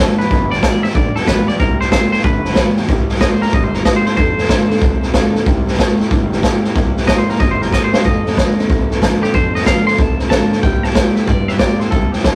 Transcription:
Already playing: G2 A4
0.00 G2 D3 E3 F3 B3 F4 G4
0.19 G2 E3 F3 B3 F4 G4 B4, muted upright bass stroke, snare
0.30 G1 G2 D3 F3 B3 F4 G4, kick, snare
0.51 G2 D3 F3 B3 F4 G4 D5, snare
0.63 G2 D3 E3 F3 B3 F4 G4, kick, snare, hi-hat pedal
0.83 G2 E3 F3 B3 F4 G4 E5, muted upright bass stroke, snare
0.89 snare
0.94 A1 G2 D3 F3 B3 F4 G4 D5, kick, snare
1.15 G2 D3 F3 B3 F4 G4 A4, muted upright bass stroke, snare
1.22 snare
1.27 B1 G2 D3 E3 F3 B3 F4 G4 B4, kick, snare, hi-hat pedal
1.47 G2 E3 F3 B3 F4 G4 D5, muted upright bass stroke, snare
1.59 C2 C3 G3 A#3 E4 G4 A#4, kick, snare
1.80 C3 G3 A#3 E4 G4 C5, snare
1.92 C3 G3 A3 A#3 E4 G4 C5, kick, snare, hi-hat pedal
2.12 C3 A3 A#3 E4 G4 C5, muted upright bass stroke, snare
2.18 snare
2.24 G1 G2 D3 F3 B3 G4 B4, kick, snare
2.45 G2 D3 F3 B3 F4 G4, snare
2.51 snare
2.55 G2 D3 E3 F3 B3 F4 G4, kick, snare, hi-hat pedal
2.77 G2 E3 F3 B3 F4 G4, muted upright bass stroke, snare
2.83 snare
2.88 C2 C3 G3 A#3 E4 G4, kick, snare
3.09 C3 G3 A#3 E4 G4, snare
3.15 snare
3.21 C3 G3 A3 E4 G4 D#5, kick, snare, hi-hat pedal
3.31 C5
3.41 C3 A3 A#3 E4 G4 A#4, muted upright bass stroke, snare
3.48 snare
3.53 G1 C3 G3 A#3 E4 G4 D#5, kick, snare
3.64 C5
3.73 C3 G3 A#3 E4 G4 A#4, snare
3.85 C3 G3 A3 A#3 E4 G4 D#5, kick, snare, hi-hat pedal
3.96 C5
4.05 C3 A3 A#3 E4 G4 C5, muted upright bass stroke, snare
4.16 F2 C3 F3 C4 D#4 A4 C5, kick, snare
4.37 F2 C3 C4 D#4 A4, snare
4.43 snare
4.48 F2 D3 F3 C4 D#4 A4, kick, snare, hi-hat pedal
4.69 F2 D3 C4 D#4 A4, muted upright bass stroke, snare
4.76 snare
4.81 C2 F2 C3 F3 C4 D#4 A4, kick, snare
5.01 F2 C3 C4 D#4 A4, snare
5.14 F2 D3 F3 C4 D#4 A4, kick, snare, hi-hat pedal
5.34 F2 D3 C4 D#4 A4, muted upright bass stroke, snare
5.46 C2 C3 G3 A#3 E4 G4, kick, snare
5.66 C3 G3 A#3 E4 G4, snare
5.73 C3, snare
5.78 C3 G3 A3 A#3 E4 G4, kick, snare, hi-hat pedal
5.98 C3 A3 A#3 E4 G4, muted upright bass stroke, snare
6.10 G1 C3 G3 A#3 E4 G4, kick, snare
6.30 C3 G3 A#3 E4 G4, snare
6.42 C3 G3 A3 A#3 E4 G4, kick, snare, hi-hat pedal
6.63 C3 A3 A#3 E4 G4, muted upright bass stroke, snare
6.75 C2 C3 G3 A#3 E4 G4, kick, snare
6.96 C3 G3 A#3 E4 G4, snare
7.03 snare
7.07 C3 G3 A3 A#3 E4 G4 D#5, kick, snare, hi-hat pedal
7.18 C5
7.28 C3 A3 A#3 E4 G4 A#4, muted upright bass stroke, snare
7.35 snare
7.39 G1 C3 G3 A#3 G4 D#5, kick, snare
7.51 C5
7.61 C3 G3 A#3 E4 G4 A#4, snare
7.71 C3 G3 A3 A#3 E4 G4 D#5, kick, snare, hi-hat pedal
7.84 C5
7.92 C3 A3 A#3 E4 G4 C5, muted upright bass stroke, snare
8.04 F2 C3 F3 C4 D#4 A4 D#5, kick, snare
8.25 F2 C3 C4 D#4 A4, snare
8.32 snare
8.37 F2 D3 F3 C4 D#4 A4, kick, snare, hi-hat pedal
8.57 F2 D3 C4 D#4 A4, muted upright bass stroke, snare
8.69 C2 F2 C3 F3 C4 D#4 A4, kick, snare
8.90 F2 C3 C4 D#4 A4, snare
9.01 F2 D3 F3 C4 D#4 A4, kick, snare, hi-hat pedal
9.21 F2 D3 C4 D#4 G4 A4, muted upright bass stroke, snare
9.33 F2 C3 F3 C4 D#4 A4 C5, kick, snare
9.54 F2 C3 C4 D#4 A4 D#5, snare
9.61 snare
9.66 F2 D3 F3 C4 D#4 A4 F5, kick, snare, hi-hat pedal
9.86 F2 D3 C4 D#4 A4 C6, muted upright bass stroke, snare
9.93 snare
9.98 C2 F2 C3 F3 C4 D#4 A4 A5, kick, snare
10.19 F2 C3 C4 D#4 A4, snare
10.30 F2 D3 F3 C4 D#4 A4 A5, kick, snare, hi-hat pedal
10.51 F2 D3 D#4 A4, muted upright bass stroke, snare
10.55 C4
10.63 C2 C3 G3 A#3 E4 G4 G5, kick, snare
10.83 C3 G3 A#3 E4 G4 A5, snare
10.89 snare
10.95 C3 G3 A3 A#3 E4 G4 G5, kick, snare, hi-hat pedal
11.15 C3 A3 E4 G4 E5, muted upright bass stroke, snare
11.20 A#3
11.27 G2 C3 G3 A#3 E4 D5, kick, snare
11.31 G4
11.48 C3 G3 A#3 E4 G4 E5, snare
11.59 C3 G3 A3 A#3 E4 G4 D5, kick, snare, hi-hat pedal
11.80 C3 A3 A#3 E4 G4 C5, muted upright bass stroke, snare
11.91 C2 C3 G3 A#3 E4 G4 A4, kick, snare
12.12 C3 G3 E4 G4, muted upright bass stroke, snare
12.16 A#3, snare
12.24 C2 C3 G3 A3 A#3 E4 G4, kick, snare, hi-hat pedal

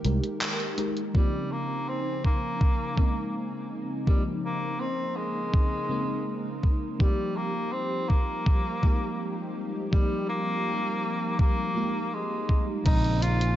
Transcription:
Already playing: D#3 G#3 A#3 D#4 G4 A#4
0.04 C2 G#3 D#4 G4 A#4, closed hi-hat
0.23 closed hi-hat
0.41 clap, closed hi-hat
0.60 closed hi-hat
0.77 G#3 D#4 G4 A#4, closed hi-hat
0.97 closed hi-hat
1.13 C#3 F3 G3 A#3 C4 D#4 G#5, kick
1.52 A#3
1.88 C4
2.24 A#3, kick
2.61 kick
2.96 C#3 G#3 A#3 C4 D#4, kick
4.05 C#3 F3 G3 A#3 C4 D#4 A#4, kick
4.44 A#3
4.80 C4
5.16 G#3
5.54 kick
5.89 C#3 G#3 A#3 C4 D#4
6.63 kick
6.99 F3 G3 A#3 C4 D#4 G4, kick
7.36 A#3
7.72 C4
8.09 A#3, kick
8.46 kick
8.81 F3 G#3 A#3 D#4 G4, kick
9.91 F3 G3 A#3 D#4 G4, kick
10.29 A#3
11.39 A#3, kick
11.74 F3 G#3 A#3 D#4 G4
12.14 G#3
12.49 kick
12.84 A#1 C#3 G#3 C4 D#4 C5 G#5, kick, closed hi-hat, crash
13.04 closed hi-hat
13.22 F4, closed hi-hat
13.41 closed hi-hat

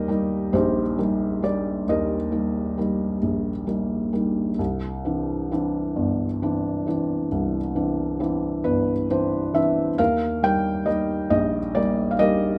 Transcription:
Already playing: D#2 G3 A#3 D#4 G4 A#4 D#5 F5
0.08 G3 A#3 D#4
0.53 A#1 D#4 G4 C5
0.98 G3 A#3 D#4
1.42 G3 A#3 D#4 D5
1.88 D#2 G4 A#4 D#5
2.32 G3 A#3 D#4
2.78 G3 A#3 D#4
3.22 A#1
3.67 G3 A#3 D#4
4.13 G3 A#3 D#4
4.59 C2
5.05 E3 C4 D4
5.51 E3 C4 D4
5.96 G1
6.42 E3 C4 D4
6.87 E3 C4 D4
7.32 C2
7.75 E3 C4 D4
8.20 E3 C4 D4
8.64 G1 B4
9.10 E3 C4 D4 C5
9.54 E3 C4 D4 E5
9.98 D#2 A#4 F5
10.43 G3 A#3 D#4 G5
10.86 G3 A#3 D#4 D#5
11.30 A#1 D#5
11.75 G3 A#3 D#4 D5
12.11 F5
12.19 G3 A#3 D#4 G4 A#4 D#5

